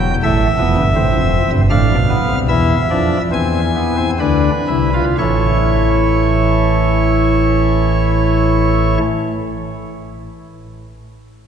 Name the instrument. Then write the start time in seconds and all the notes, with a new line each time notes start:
pipe organ
Already playing: E1 E2 F#3 G5
0.23 A1 A2 A3 E5
0.58 F1 F2 B3
0.77 G1 G2
0.95 A1 A2 C4
1.14 F1 F2
1.52 G1 G2
1.70 A1 A2 D4 F5
1.91 B1 B2
2.09 B3
2.29 C2 C3
2.48 E2 E3 E4 E5
2.91 F2 F3 D4
3.32 E2 E3 C4 G#5
3.75 B3
3.97 C4
4.20 D2 D3 D4 B4
4.68 C2 C3 E4
4.94 F4
5.18 A1 A2 E3 A3 E4 C#5